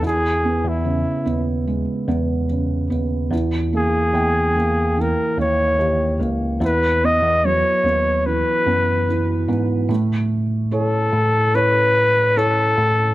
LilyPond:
<<
  \new Staff \with { instrumentName = "Flugelhorn" } { \time 4/4 \key a \lydian \tempo 4 = 73 gis'8. e'4 r2 r16 | r8 gis'4. ais'8 cis''4 r8 | b'8 dis''8 cis''4 b'4. r8 | r4 a'4 b'4 a'4 | }
  \new Staff \with { instrumentName = "Felt piano" } { \time 4/4 \key a \lydian e'8 b8 cis8 b8 gis8 b8 cis8 b8 | e8 ais8 g''8 ais8 e8 ais8 g'8 ais8 | e'8 b8 fis8 b8 e8 b8 e8 b8 | a4 <e' a' cis''>4 <e' a' cis''>4 <e' a' cis''>4 | }
  \new Staff \with { instrumentName = "Tine electric piano" } { \clef bass \time 4/4 \key a \lydian e,8. e,8 r16 dis,8. r16 e,4 dis,8 | e,4 e,4~ e,16 r16 dis,8 dis,8 cis,8 | e,8. e,8 r16 dis,8. r16 fis,4 gis,8 | a,4. a,2 a,8 | }
>>